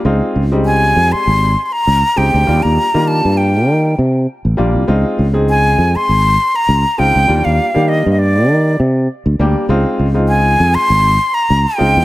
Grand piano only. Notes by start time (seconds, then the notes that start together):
0.05 G#3 C4 D#4 F4
0.52 G3 G#3 C4 D#4
2.16 G#3 C4 D#4 G4
2.47 G3 A#3 D4 F4
2.94 G3 A#3 D4 F4
4.57 G3 A#3 D4 F4
4.87 G#3 C4 D#4 F4
5.33 G#3 C4 D#4 G#4
6.98 G#3 C4 D#4 F4
7.28 G3 A#3 D4 F4
7.74 G3 A#3 D4 G4
9.40 G3 A#3 D4 G4
9.69 G#3 C4 D#4 F4
10.14 G#3 C4 D#4 F4
11.78 G#3 C4 D#4 F4